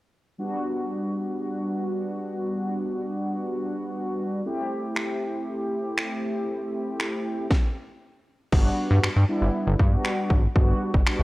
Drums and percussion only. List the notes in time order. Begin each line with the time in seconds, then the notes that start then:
4.96 finger snap
5.98 finger snap
7.00 finger snap
7.51 kick, snare
8.52 kick, crash
9.03 finger snap
9.79 kick
10.05 finger snap
10.30 kick
10.56 kick
10.94 kick
11.07 finger snap